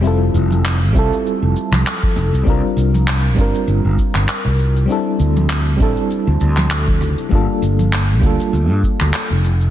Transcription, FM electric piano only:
X:1
M:4/4
L:1/8
Q:"Swing 16ths" 1/4=99
K:Gdor
V:1 name="FM electric piano"
[G,CEFA]3 [G,CEFA]4- [G,CEFA] | [G,CDFB]3 [G,CDFB]4- [G,CDFB] | [G,CDEA]3 [G,CDEA]4- [G,CDEA] | [G,B,DFA]3 [G,B,DFA]4 z |]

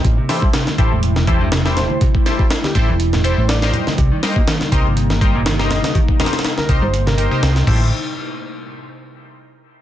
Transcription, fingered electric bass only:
X:1
M:4/4
L:1/16
Q:"Swing 16ths" 1/4=122
K:Am
V:1 name="Fingered electric bass" clef=bass
A,,, z4 z A,,, E,,,8 z | z6 A,,, E,,,4 A,,,3 z2 | C,, z4 z C,, G,,,8 z | z6 C,, G,,,4 z C,,2 A,,,2 |
z16 |]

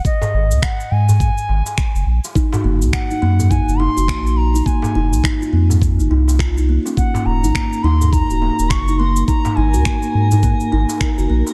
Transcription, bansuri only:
X:1
M:4/4
L:1/8
Q:"Swing 16ths" 1/4=104
K:Abmix
V:1 name="Bansuri"
e2 g a4 z | z2 g2 a c'2 b | a2 z6 | g b2 c' b2 d' c' |
b a6 z |]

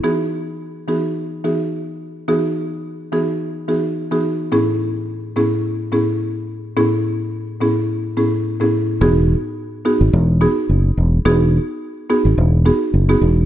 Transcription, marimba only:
X:1
M:4/4
L:1/16
Q:"Swing 16ths" 1/4=107
K:E
V:1 name="Marimba"
[E,B,DFG]4 z2 [E,B,DFG] z3 [E,B,DFG] z4 z | [E,B,DFG]4 z2 [E,B,DFG] z3 [E,B,DFG] z2 [E,B,DFG] z2 | [A,,B,CEG]4 z2 [A,,B,CEG] z3 [A,,B,CEG] z4 z | [A,,B,CEG]4 z2 [A,,B,CEG] z3 [A,,B,CEG] z2 [A,,B,CEG] z2 |
[B,DFG]4 z2 [B,DFG] z3 [B,DFG] z4 z | [B,DFG]4 z2 [B,DFG] z3 [B,DFG] z2 [B,DFG] z2 |]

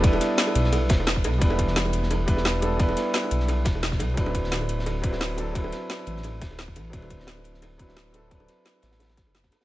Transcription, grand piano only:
X:1
M:4/4
L:1/8
Q:"Swing 16ths" 1/4=174
K:Dmix
V:1 name="Grand piano"
[G,B,DEB]4- [G,B,DEB] z3 | [G,B,DEB]4- [G,B,DEB] [G,B,DEB]2 [G,B,DEA] | [G,B,DEB]4- [G,B,DEB] z3 | [F,CDEB]4- [F,CDEB] [F,CDEB]2 [F,CDEA] |
[F,CDEB]4- [F,CDEB] z3 | [F,CDEB]4- [F,CDEB] [F,CDEB]2 [F,CDEA] | [F,CDEB]4- [F,CDEB] z3 |]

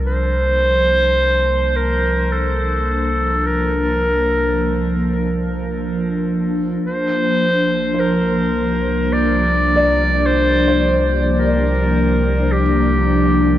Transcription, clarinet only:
X:1
M:3/4
L:1/16
Q:1/4=53
K:Bb
V:1 name="Clarinet"
c6 B2 A4 | B6 z6 | c4 B4 d4 | c3 z B4 G4 |]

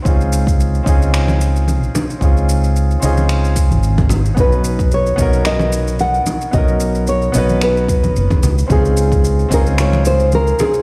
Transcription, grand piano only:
X:1
M:4/4
L:1/8
Q:"Swing 16ths" 1/4=111
K:C#dor
V:1 name="Grand piano"
[^B,CD^EG]3 [B,CDEG]4- [B,CDEG] | [^B,CD^EG]3 [B,CDEG]4- [B,CDEG] | [B,CDFB]3 [B,CDFA]4- [B,CDFA] | [B,CDFA]3 [B,CDFB]4 z |
[^B,CD^EG]3 [B,CDEG]4- [B,CDEG] |]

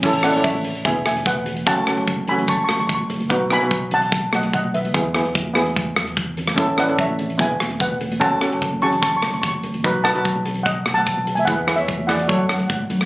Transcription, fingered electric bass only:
X:1
M:4/4
L:1/16
Q:1/4=147
K:F#m
V:1 name="Fingered electric bass" clef=bass
A,,,3 A,,,4- A,,, E,,,2 E,,,6 | F,,,3 F,,,6- F,,, F,,,6 | B,,,3 B,,,6- B,,, B,,,6 | E,,3 E,,6- E,, E,,6 |
A,,,3 A,,,4- A,,, E,,,2 E,,,6 | F,,,3 F,,,6- F,,, F,,,6 | B,,,3 B,,,6- B,,, B,,,6 | E,,3 E,,4- E,, F,,2 F,,2 G,,2 F,,2 |]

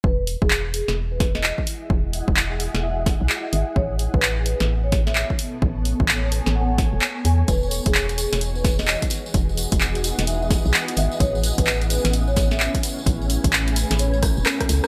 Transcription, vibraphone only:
X:1
M:4/4
L:1/16
Q:"Swing 16ths" 1/4=129
K:E
V:1 name="Vibraphone"
B z2 G z2 G z2 B z d z4 | z8 e z4 z e z | c z2 B z2 B z2 c z e z4 | z8 f z4 z g z |
B z2 G z2 G z2 B z d z4 | z8 e z4 z e z | c z2 B z2 B z2 c z e z4 | z8 c z4 z A z |]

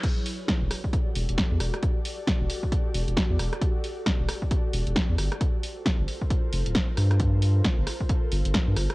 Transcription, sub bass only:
X:1
M:4/4
L:1/16
Q:"Swing 16ths" 1/4=134
K:Glyd
V:1 name="Sub bass" clef=bass
z4 z E,,, z4 E,,, E,,, z E,, E,,, z | z4 z E,,, z4 E,,, E,,, z E,, E,,, z | z4 z E,,, z4 E,,, E,,, z E,, G,,, z | z4 z G,,, z4 =F,,, D,,, z2 G,,2- |
G,,4 z G,,, z4 G,,, G,,, z G,, G,,, z |]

